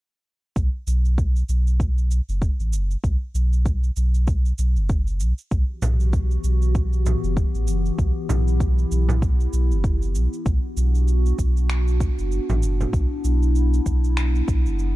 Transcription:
0.56 0.69 B1 medium
0.56 kick medium
0.56 cabasa soft
0.87 1.43 B1 medium
0.87 cabasa medium
1.05 cabasa soft
1.18 kick medium
1.18 cabasa soft
1.36 cabasa soft
1.49 2.21 B1 medium
1.49 cabasa medium
1.67 cabasa soft
1.80 kick medium
1.80 cabasa soft
1.98 cabasa soft
2.11 cabasa medium
2.29 2.50 F#1 medium
2.29 cabasa soft
2.42 kick medium
2.42 cabasa soft
2.60 2.74 A1 medium
2.60 cabasa soft
2.72 2.96 F#1 medium
2.72 cabasa medium
2.91 cabasa soft
3.04 3.17 B1 medium
3.04 kick medium
3.04 cabasa soft
3.34 3.91 B1 medium
3.34 cabasa medium
3.53 cabasa soft
3.66 kick medium
3.66 cabasa soft
3.84 cabasa soft
3.96 4.53 B1 medium
3.96 cabasa medium
4.14 cabasa soft
4.27 kick loud
4.27 cabasa soft
4.45 cabasa soft
4.58 4.78 B1 medium
4.58 cabasa medium
4.76 5.22 F#1 medium
4.76 cabasa soft
4.89 kick loud
4.89 cabasa soft
5.07 cabasa soft
5.20 5.33 B1 medium
5.20 cabasa medium
5.38 cabasa soft
5.51 5.64 B1 medium
5.51 10.42 E3 medium
5.51 10.42 B3 medium
5.51 7.96 F#4 medium
5.51 10.42 G4 medium
5.51 kick medium
5.51 cabasa soft
5.82 6.38 B1 loud
5.82 frame drum medium
5.82 cabasa medium
6.00 cabasa soft
6.13 kick loud
6.13 cabasa soft
6.31 cabasa soft
6.44 7.16 B1 medium
6.44 cabasa medium
6.62 cabasa soft
6.75 kick loud
6.75 cabasa soft
6.93 cabasa soft
7.06 frame drum medium
7.06 cabasa medium
7.23 7.44 F#1 medium
7.23 cabasa soft
7.37 kick loud
7.37 cabasa soft
7.55 7.69 A1 loud
7.55 cabasa soft
7.67 7.91 F#1 medium
7.67 cabasa medium
7.86 cabasa soft
7.98 8.11 B1 medium
7.98 10.44 E4 medium
7.98 kick medium
7.98 cabasa soft
8.29 8.85 B1 medium
8.29 frame drum medium
8.29 cabasa medium
8.48 cabasa soft
8.60 kick loud
8.60 cabasa soft
8.78 cabasa soft
8.91 9.47 B1 medium
8.91 cabasa medium
9.09 frame drum medium
9.09 cabasa soft
9.22 kick loud
9.22 cabasa soft
9.40 cabasa soft
9.53 9.73 B1 medium
9.53 cabasa medium
9.71 10.16 F#1 medium
9.71 cabasa soft
9.84 kick loud
9.84 cabasa soft
10.02 cabasa soft
10.15 10.28 B1 medium
10.15 cabasa medium
10.33 cabasa soft
10.46 10.59 B1 medium
10.46 14.96 B3 medium
10.46 14.96 D4 medium
10.46 12.91 F#4 medium
10.46 kick loud
10.46 cabasa soft
10.77 11.33 B1 medium
10.77 cabasa medium
10.95 cabasa soft
11.08 cabasa soft
11.26 cabasa soft
11.39 12.11 B1 medium
11.39 kick medium
11.39 cabasa medium
11.57 cabasa soft
11.70 finger snap medium
11.70 cabasa soft
11.88 cabasa soft
12.00 kick loud
12.00 cabasa medium
12.19 12.39 F#1 medium
12.19 cabasa soft
12.32 cabasa soft
12.49 12.64 A1 loud
12.49 frame drum medium
12.49 cabasa soft
12.62 12.86 F#1 medium
12.62 cabasa medium
12.80 frame drum medium
12.80 cabasa soft
12.93 13.06 B1 medium
12.93 14.96 E4 medium
12.93 kick loud
12.93 cabasa soft
13.24 13.80 B1 loud
13.24 cabasa medium
13.43 cabasa soft
13.55 cabasa soft
13.74 cabasa soft
13.86 14.42 B1 medium
13.86 kick medium
13.86 cabasa medium
14.04 cabasa soft
14.17 finger snap medium
14.17 cabasa soft
14.35 cabasa soft
14.48 14.67 B1 loud
14.48 kick loud
14.48 cabasa medium
14.66 14.96 F#1 medium
14.66 cabasa soft
14.79 cabasa soft

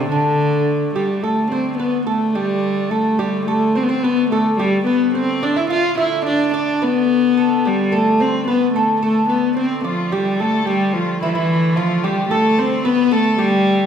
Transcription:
0.00 0.11 C3 medium
0.00 1.24 D3 medium
0.00 1.24 A3 medium
0.00 0.12 C4 medium
0.11 0.92 D3 medium
0.11 0.92 D4 medium
0.96 1.24 G3 medium
0.96 1.23 G4 medium
1.23 5.70 D3 medium
1.23 1.51 A3 medium
1.23 5.70 A3 medium
1.23 1.51 A4 medium
1.52 1.78 C4 medium
1.52 1.79 C5 medium
1.79 2.05 B3 medium
1.79 2.06 B4 medium
2.07 2.36 A3 medium
2.07 2.35 A4 medium
2.35 2.92 G3 medium
2.35 2.91 G4 medium
2.90 3.21 A3 medium
2.90 3.19 A4 medium
3.19 3.46 G3 medium
3.19 3.47 G4 medium
3.47 3.78 A3 medium
3.47 3.75 A4 medium
3.75 3.84 C4 medium
3.75 3.88 C5 medium
3.83 3.90 B3 medium
3.89 4.04 C4 medium
3.89 4.04 C5 medium
4.03 4.30 B3 medium
4.03 4.32 B4 medium
4.31 4.57 A3 medium
4.31 4.58 A4 medium
4.59 4.85 G3 medium
4.59 4.86 G4 medium
4.87 5.13 B3 medium
4.87 5.14 B4 medium
5.15 5.44 C4 medium
5.15 5.41 C5 medium
5.43 5.59 D4 medium
5.43 5.56 D5 medium
5.56 5.71 E4 medium
5.56 5.70 E5 medium
5.70 10.13 D3 medium
5.70 10.13 A3 medium
5.70 5.97 F4 loud
5.70 5.97 F5 medium
5.97 6.24 E4 medium
5.97 6.26 E5 medium
6.26 6.52 D4 medium
6.26 6.52 D5 medium
6.54 6.85 D4 medium
6.54 6.82 D5 medium
6.82 7.68 B3 medium
6.82 7.39 B4 medium
7.37 7.65 A4 medium
7.65 7.96 G3 medium
7.65 7.93 G4 medium
7.92 8.23 A3 medium
7.92 8.20 A4 medium
8.20 8.48 C4 medium
8.20 8.47 C5 medium
8.48 8.73 B3 medium
8.48 8.76 B4 medium
8.75 9.00 A3 medium
8.75 9.01 A4 medium
9.02 9.28 A3 medium
9.02 9.31 A4 medium
9.29 9.55 B3 medium
9.29 9.56 B4 medium
9.56 9.83 C4 medium
9.56 9.84 C5 medium
9.84 10.14 F3 medium
9.84 10.13 F4 medium
9.84 10.10 D5 medium
10.11 13.86 D3 medium
10.11 10.42 G3 medium
10.11 13.86 A3 medium
10.11 10.37 G4 medium
10.11 10.39 G4 medium
10.38 10.67 A3 medium
10.38 10.67 A4 medium
10.66 10.95 G3 medium
10.66 10.92 G4 medium
10.66 11.23 G4 medium
10.93 11.21 F3 medium
10.93 11.19 F4 medium
11.21 11.29 E3 medium
11.21 11.33 E4 medium
11.21 11.34 E4 medium
11.28 11.36 F3 medium
11.33 11.77 E3 medium
11.33 11.78 E4 medium
11.33 11.77 E4 medium
11.76 12.06 F3 medium
11.76 12.05 F4 medium
12.03 12.30 G3 medium
12.03 12.33 G4 medium
12.03 12.30 G4 medium
12.30 12.61 A3 medium
12.30 12.58 A4 medium
12.30 12.60 A4 medium
12.58 12.87 C4 medium
12.58 12.84 C5 medium
12.85 13.14 B3 loud
12.85 13.11 B4 medium
12.85 13.13 B4 medium
13.11 13.39 A3 medium
13.11 13.38 A4 medium
13.11 13.41 A4 medium
13.38 13.86 G3 medium
13.38 13.86 G4 medium

